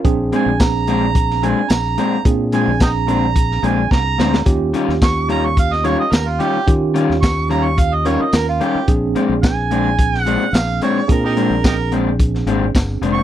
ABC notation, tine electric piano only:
X:1
M:4/4
L:1/8
Q:1/4=109
K:Bbmix
V:1 name="Tine electric piano"
[CDA]8 | [CDA]8 | [_DFG]8 | [_DFG]4- [DFG] [DFB]3 |
[CDA]8 | [CDA]8 |]